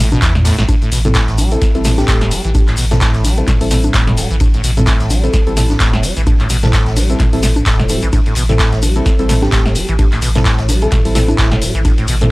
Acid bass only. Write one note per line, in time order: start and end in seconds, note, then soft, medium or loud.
0.12 0.20 B2 loud
0.22 0.33 E3 loud
0.45 0.56 A2 loud
0.58 0.64 A2 loud
0.69 0.76 A2 medium
0.82 0.90 A2 medium
0.92 0.99 B2 medium
1.05 1.08 A2 loud
1.15 1.40 A2 loud
1.38 1.53 G3 loud
1.52 1.57 A2 medium
1.85 1.89 A3 medium
2.08 2.33 A2 loud
2.31 2.42 G3 loud
2.45 2.50 E3 medium
2.55 2.62 A2 medium
2.68 2.76 A2 medium
2.78 2.85 B2 medium
2.91 2.95 A2 loud
3.01 3.26 A2 loud
3.25 3.39 G3 loud
3.38 3.43 A2 medium
3.71 3.75 A3 medium
3.94 4.19 A2 loud
4.18 4.28 G3 loud
4.31 4.36 E3 medium
4.41 4.48 A2 medium
4.54 4.62 A2 medium
4.64 4.71 B2 medium
4.77 4.81 A2 loud
4.87 5.12 A2 loud
5.11 5.25 G3 loud
5.24 5.29 A2 medium
5.57 5.61 A3 medium
5.80 6.05 A2 loud
6.04 6.14 G3 loud
6.17 6.22 E3 medium
6.27 6.34 A2 medium
6.40 6.48 A2 medium
6.50 6.57 B2 medium
6.63 6.66 A2 loud
6.73 6.98 A2 loud
6.96 7.11 G3 loud
7.10 7.15 A2 medium
7.43 7.47 A3 medium
7.66 7.91 A2 loud
7.90 8.00 G3 loud
8.03 8.08 E3 medium
8.13 8.20 A2 medium
8.26 8.34 A2 medium
8.36 8.43 B2 medium
8.49 8.53 A2 loud
8.60 8.84 A2 loud
8.83 8.97 G3 loud
8.96 9.01 A2 medium
9.29 9.34 A3 medium
9.52 9.77 A2 loud
9.76 9.87 G3 loud
9.89 9.94 E3 medium
9.99 10.06 A2 medium
10.12 10.20 A2 medium
10.22 10.29 B2 medium
10.35 10.39 A2 loud
10.45 10.70 A2 loud
10.69 10.84 G3 loud
10.82 10.87 A2 medium
11.15 11.20 A3 medium
11.39 11.63 A2 loud
11.62 11.73 G3 loud
11.75 11.80 E3 medium
11.85 11.92 A2 medium
11.98 12.06 A2 medium
12.08 12.16 B2 medium
12.22 12.25 A2 loud